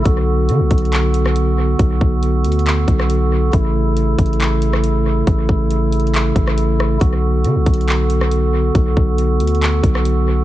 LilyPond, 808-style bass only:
\new Staff \with { instrumentName = "808-style bass" } { \clef bass \time 4/4 \key b \dorian \tempo 4 = 138 b,,4 d16 b,,16 b,,2~ b,,8 | b,,8 b,,4 d,4 b,,4. | a,,4. a,,2~ a,,8 | a,,8 a,,2 a,,4. |
b,,4 d16 b,,16 b,,2~ b,,8 | b,,8 b,,4 d,4 b,,4. | }